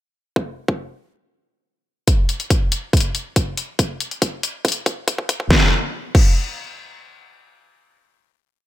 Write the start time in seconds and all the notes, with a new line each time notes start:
0.36 kick
0.68 kick
2.08 kick, closed hi-hat
2.29 closed hi-hat
2.40 closed hi-hat
2.50 kick, closed hi-hat
2.72 closed hi-hat
2.93 kick, closed hi-hat
2.97 closed hi-hat
3.00 closed hi-hat
3.15 closed hi-hat
3.36 kick, closed hi-hat
3.57 open hi-hat
3.79 kick, closed hi-hat
4.00 closed hi-hat
4.11 closed hi-hat
4.22 kick, closed hi-hat
4.43 closed hi-hat
4.65 kick, closed hi-hat
4.68 closed hi-hat
4.72 closed hi-hat
4.86 kick, closed hi-hat
5.08 kick, closed hi-hat
5.18 kick
5.29 kick, open hi-hat
5.40 kick
5.50 kick, snare
6.15 kick, crash